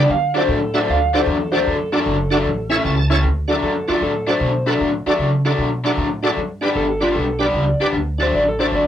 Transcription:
Already playing: G2 G3
0.00 D5
0.09 D3 F5
0.34 D3 F#3 A3 D4 F#4 A4 C5 D5
0.48 A2 A4
0.74 D3 F#3 A3 D4 F#4 A4 C5 E5
0.89 D2 F5
1.14 D3 F#3 A3 D4 F#4 A4 C5 D5
1.26 E2 A4
1.52 D3 F#3 A3 D4 F#4 A4 C5 D5
1.67 F#2 A4
1.92 D3 F#3 A3 D4 F#4 A4 D5
2.06 F#1
2.30 F#3 A3 D4 F#4 A4 D5
2.34 D3
2.46 A1
2.70 A2 E3 A3 C#4 E4 A4 C#5 E5
2.85 C#2 A5
3.10 A2 E3 A3 C#4 E4 A4 C#5 A5
3.23 D2
3.48 D3 F#3 A3 D4 F#4 A4 D5
3.62 F#2 A4
3.88 D3 F#3 A3 D4 F4 F#4 A4 D5, muted upright bass stroke
4.01 A2 A4
4.27 D3 F#3 A3 D4 F#4 A4 C5 D5
4.40 B2
4.66 D3 F#3 A3 D4 F#4 A4 B4
4.80 A2
5.06 D3 F#3 A3 D4 F#4 A4 D5, muted upright bass stroke
5.18 C#3
5.45 D3 F#3 A3 D4 F#4 A4 D5
5.58 B2
5.84 D3 F#3 A3 D4 F#4 A4 D5
5.97 A2
6.23 D3 F#3 A3 D4 F#4 A4 D5
6.37 G2
6.61 G2 G3 B3 D4 G4 B4 D5
6.75 G1 A4
7.01 G2 G3 B3 D4 F4 G4 B4 D5
7.15 B1 A4
7.39 G2 G3 B3 D4 G4 B4 D5
7.54 C#2
7.79 G2 G3 B3 D4 G4 B4 D5, muted upright bass stroke
7.93 D2
8.18 D3 F#3 A3 D4 F#4 A4 D5
8.22 C5
8.33 A1 D5
8.48 A4
8.59 D3 F#3 A3 D4 F#4 A4 C5 D5
8.72 G1 D5

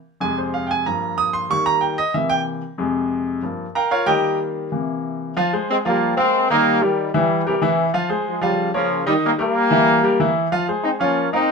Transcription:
0.20 F2 C3 G#3 G#5
0.38 C5
0.54 F5
0.67 G5
0.71 G#5
0.86 G2 F3 A#3 A#5
1.18 D#6
1.33 C6
1.50 D#3 G3 A#3 C#6
1.66 A#5
1.81 G5
1.98 D#5
2.14 C3 E3 A#3 E5
2.30 G5
2.78 F2 C3 G#3
3.42 G2 F3 A#3
3.75 A#4 F5 G5 A#5
3.91 F4 A#4 C#5 F5
4.06 D#3 G3 A#3 G4 A#4 D#5 G5
4.72 C3 E3 A#3
5.37 F3 F4 F5
5.53 G#3 G#4 C5
5.69 G#3 C4
5.84 F3 G3 A#3 F4 F5
6.17 G#3 A#3 C4 A#4 F5
6.50 D#3 G3 A#3 D#4 D#5
6.81 D#3 G3 G4 A#4
7.14 E3 G3 E4 E5
7.47 C3 E3 G3 G4 A#4
7.62 C3 E3 E4 E5
7.94 F3 F4 F5
8.09 G#3 G#4 C5
8.27 F3 G#3
8.41 C#3 F3 G3 F4 F5
8.74 C#3 F3 A#3 A#4 C#5
9.06 D#3 G3 D#4 D#5
9.24 G3 A#3
9.38 G3 A#3 G4 A#4
9.71 E3 E4 E5
10.03 G3 G4 A#4
10.20 E3 E4 E5
10.52 F3 F4 F5
10.68 G#3 G#4 C5
10.83 C4 D#4
11.00 F3 A#3 C#4 F4 F5
11.32 A#3 C4 D#4 A#4 F5

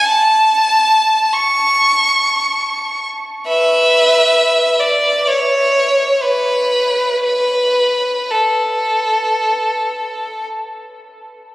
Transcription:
0.04 A5
1.33 C#6
3.47 B4 E5
4.80 D5
5.27 C#5
6.22 B4
7.24 B4
8.31 A4

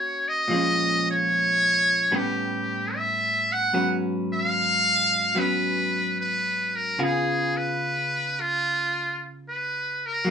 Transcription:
Already playing: D#3 A#3 C#4 F#4 C#5
0.28 D#5
0.48 A#2 F3 G#3
0.53 C#4
1.11 C#5
2.11 A2 G3 B3 C#4
2.16 G4
2.96 E5
3.52 F#5
3.73 G#2 F#3 B3 C#4
4.34 F5
5.35 F#3 B3 C#4
5.39 B4
6.21 B4
6.76 A#4
6.99 C#3 B3 F4 G#4
7.04 G#4
7.57 B4
8.41 F4
9.49 B4
10.06 A#4
10.25 F#3 A#3

